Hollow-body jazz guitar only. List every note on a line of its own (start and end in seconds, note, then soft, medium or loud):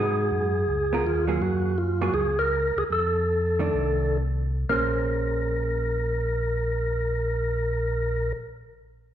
0.00 0.51 G#3 medium
0.00 0.51 D#4 soft
0.00 0.52 F#4 soft
0.00 0.52 B4 medium
0.93 1.04 B3 medium
0.93 1.04 F4 medium
0.93 1.04 A#4 medium
1.27 1.74 F#3 medium
1.27 1.74 A#3 medium
1.27 1.75 G#4 medium
2.01 2.13 F#3 medium
2.01 2.13 A#3 medium
2.01 2.13 F4 medium
2.01 2.13 G#4 medium
3.59 4.17 D#3 medium
3.59 4.17 A3 medium
3.59 4.18 D4 medium
4.69 8.36 A#3 medium
4.69 8.38 C#4 soft
4.69 8.38 G#4 medium
4.69 8.39 C5 medium